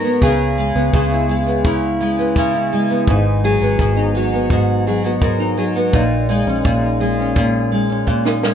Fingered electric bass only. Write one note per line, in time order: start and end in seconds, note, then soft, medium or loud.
0.22 0.71 C#2 medium
0.75 0.92 C#2 medium
0.94 3.04 C#2 medium
3.07 3.57 G#1 medium
3.61 3.78 G#1 medium
3.79 5.54 G#1 medium
5.94 6.43 A#1 loud
6.47 6.63 A#1 medium
6.65 8.54 A#1 medium